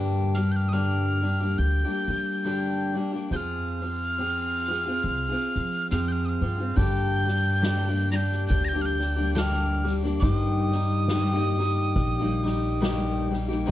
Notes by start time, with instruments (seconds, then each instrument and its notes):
Already playing: steel-string acoustic guitar G2 D3 G3 A#3 D4 G4, upright bass G2
0.35 steel-string acoustic guitar G3 A#3 D4, tin whistle F6
0.39 steel-string acoustic guitar G4
0.52 tin whistle G6
0.56 tin whistle F6
0.69 steel-string acoustic guitar G2 D3 G3, tin whistle D#6
0.73 steel-string acoustic guitar A#3 D4 G4, tin whistle F6
1.22 steel-string acoustic guitar G3 A#3 D4 G4
1.40 steel-string acoustic guitar G3 A#3 D4 G4
1.58 upright bass D2, tin whistle G6
1.84 steel-string acoustic guitar G3 A#3 D4 G4
2.08 upright bass G3
2.44 steel-string acoustic guitar G2 D3 G3 A#3 D4 G4
2.94 steel-string acoustic guitar G3 A#3 D4 G4
3.12 steel-string acoustic guitar G3 A#3 D4 G4
3.31 upright bass F2, steel-string acoustic guitar F3 C4 F4 G#4, tin whistle G6
3.36 tin whistle F6
3.81 steel-string acoustic guitar F3 C4 F4 G#4
4.18 steel-string acoustic guitar F3 C4 F4 G#4
4.68 steel-string acoustic guitar F3 C4 F4 G#4
4.86 steel-string acoustic guitar C4 F4 G#4
5.04 upright bass C2
5.29 steel-string acoustic guitar C4 F4 G#4
5.56 upright bass F3
5.91 upright bass F2, steel-string acoustic guitar F3 C4 F4 G#4, tin whistle F6
6.08 tin whistle F6 G6
6.25 tin whistle D#6 F6
6.41 upright bass G2, steel-string acoustic guitar F3 C4 F4 G#4
6.58 steel-string acoustic guitar C4 F4 G#4
6.76 steel-string acoustic guitar G2 D3 G3 A#3 D4 G4, upright bass G2, tin whistle G6, kick, snare
7.25 steel-string acoustic guitar G3 A#3 D4 G4, snare
7.62 steel-string acoustic guitar G2 D3 G3 A#3 D4 G4, snare
7.88 steel-string acoustic guitar G3 A#3 D4 G4
8.11 steel-string acoustic guitar G3 A#3 D4 G4, tin whistle A#6, snare
8.16 tin whistle G6
8.32 snare
8.48 upright bass D2, tin whistle G6, kick, snare
8.65 tin whistle G6 A#6
8.73 steel-string acoustic guitar G3 A#3 D4 G4
8.82 tin whistle F6 G6
8.98 steel-string acoustic guitar G3 A#3 D4 G4, snare
9.16 steel-string acoustic guitar G3 A#3 D4 G4
9.33 steel-string acoustic guitar G2 D3 G3 A#3 D4 G4, tin whistle G6, snare
9.38 tin whistle F6
9.84 steel-string acoustic guitar G3 A#3 D4 G4, snare
10.03 steel-string acoustic guitar G3 A#3 D4 G4, snare
10.20 steel-string acoustic guitar G2 D#3 G3 A#3 D#4 G4, upright bass G2, tin whistle D6, kick, snare
10.35 tin whistle D#6
10.72 steel-string acoustic guitar G3 A#3 D#4, snare
10.76 steel-string acoustic guitar G4
11.08 steel-string acoustic guitar G2 D#3 G3 A#3 D#4 G4, snare
11.33 steel-string acoustic guitar G3 A#3 D#4 G4
11.57 steel-string acoustic guitar G3 A#3 D#4 G4, snare
11.95 upright bass A#1, kick, snare
12.19 steel-string acoustic guitar G3 A#3 D#4 G4
12.43 steel-string acoustic guitar G3 A#3 D#4 G4, snare
12.80 steel-string acoustic guitar G2 D#3 G3 A#3 D#4 G4, snare
13.30 steel-string acoustic guitar G3 A#3 D#4 G4, snare
13.48 steel-string acoustic guitar G3 A#3 D#4 G4, snare
13.66 steel-string acoustic guitar G#2 D#3 G#3 C4 G#4